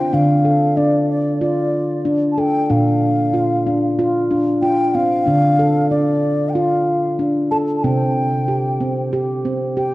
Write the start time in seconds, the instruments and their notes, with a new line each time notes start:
Already playing: handpan C4, bansuri G5
0.13 handpan D3 D4, bansuri F5
0.45 handpan A4
0.77 handpan D4, bansuri D5
1.10 bansuri D5
1.41 handpan F4, bansuri D5
2.05 handpan D4
2.32 bansuri A5
2.38 handpan A4, bansuri G5
2.70 handpan A#2 D4, bansuri F5
3.34 handpan F4
3.67 handpan D4
3.99 handpan F4
4.31 handpan D4
4.62 handpan F4, bansuri G5
4.95 handpan C4, bansuri F5
5.27 handpan D3 D4
5.59 handpan A4
5.90 handpan D4, bansuri D5
6.49 bansuri G5
6.54 handpan F4, bansuri F5
7.19 handpan D4
7.51 handpan A4, bansuri A5
7.77 bansuri A5
7.83 handpan C3 C4, bansuri G5
8.48 handpan G4
8.80 handpan C4
9.13 handpan G4
9.45 handpan C4
9.77 handpan G4, bansuri G5